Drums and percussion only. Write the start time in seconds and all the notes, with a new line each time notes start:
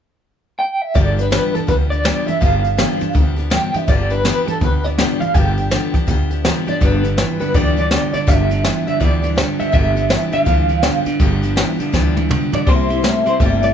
0.95 kick, closed hi-hat
1.19 closed hi-hat
1.32 snare, closed hi-hat
1.55 closed hi-hat
1.68 kick, closed hi-hat
1.91 closed hi-hat
2.05 snare, closed hi-hat
2.28 closed hi-hat
2.42 kick, closed hi-hat
2.64 closed hi-hat
2.78 snare, closed hi-hat
3.01 closed hi-hat
3.15 kick, closed hi-hat
3.38 closed hi-hat
3.51 snare, closed hi-hat
3.74 closed hi-hat
3.88 kick, closed hi-hat
4.10 closed hi-hat
4.25 snare, closed hi-hat
4.48 closed hi-hat
4.61 kick, closed hi-hat
4.85 closed hi-hat
4.98 snare, closed hi-hat
5.21 closed hi-hat
5.35 kick, closed hi-hat
5.57 closed hi-hat
5.71 snare, closed hi-hat
5.94 kick, closed hi-hat
6.08 kick, closed hi-hat
6.31 closed hi-hat
6.45 snare, closed hi-hat
6.68 closed hi-hat
6.81 kick, closed hi-hat
7.04 closed hi-hat
7.18 snare, closed hi-hat
7.41 closed hi-hat
7.54 kick, closed hi-hat
7.77 closed hi-hat
7.91 snare, closed hi-hat
8.14 closed hi-hat
8.28 kick, closed hi-hat
8.51 closed hi-hat
8.64 snare, closed hi-hat
8.87 closed hi-hat
9.01 kick, closed hi-hat
9.24 closed hi-hat
9.37 snare, closed hi-hat
9.60 closed hi-hat
9.73 kick, closed hi-hat
9.97 closed hi-hat
10.10 snare, closed hi-hat
10.32 closed hi-hat
10.46 kick, closed hi-hat
10.69 closed hi-hat
10.83 snare, closed hi-hat
11.06 closed hi-hat
11.20 kick, closed hi-hat
11.43 closed hi-hat
11.57 snare, closed hi-hat
11.80 closed hi-hat
11.94 kick, snare
12.17 high tom
12.31 mid tom
12.53 floor tom
12.67 kick, closed hi-hat
12.90 closed hi-hat
13.04 snare, closed hi-hat
13.26 closed hi-hat
13.40 kick, closed hi-hat
13.63 closed hi-hat